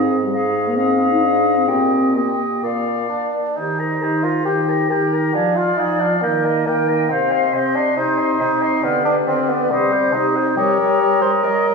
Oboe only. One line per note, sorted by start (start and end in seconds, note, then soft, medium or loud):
0.00 0.21 D#5 soft
0.33 0.76 D#5 soft
0.77 1.66 D#5 medium
1.67 2.15 D#5 soft
2.16 2.63 D#5 soft
2.63 3.33 D5 soft
3.58 3.81 G5 soft
3.79 4.05 A#5 soft
4.03 4.26 G5 soft
4.25 4.46 A#5 soft
4.47 4.71 G5 soft
4.69 4.93 A#5 soft
4.92 5.15 G5 soft
5.14 5.35 A#5 soft
5.35 5.59 G#5 soft
5.58 5.81 F5 soft
5.79 6.02 G#5 soft
6.01 6.22 F5 soft
6.23 6.47 G5 soft
6.45 6.68 A#5 soft
6.66 6.90 G5 soft
6.88 7.10 A#5 soft
7.11 7.34 G5 soft
7.32 7.56 C6 soft
7.55 7.77 G5 soft
7.76 7.97 C6 soft
7.98 8.20 G5 soft
8.19 8.42 C6 soft
8.41 8.64 G5 soft
8.63 8.83 C6 soft
8.84 9.07 F5 soft
9.06 9.30 D5 soft
9.28 9.52 F5 soft
9.51 9.71 D5 soft
9.72 9.94 D#5 soft
9.93 10.17 G5 soft
10.15 10.38 D#5 soft
10.37 10.57 G5 soft
10.58 10.78 D#5 medium
10.79 11.00 D#5 soft
11.02 11.22 D#5 soft
11.22 11.44 D#5 soft
11.45 11.66 D#5 medium
11.67 11.74 D#5 soft